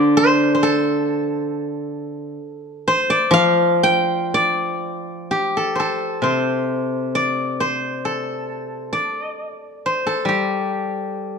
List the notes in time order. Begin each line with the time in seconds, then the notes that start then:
Already playing: D3 C5 D5
0.17 C5
0.55 C5
0.63 A4
2.88 C5
3.10 D5
3.31 F3 F5
3.83 G5
4.34 D5
5.31 G4
5.57 A4
5.75 C5
5.80 A4
6.22 C3 C5
7.15 D5
7.60 C5
8.05 A4
8.93 D5
9.86 C5
10.07 A4
10.25 G3 G4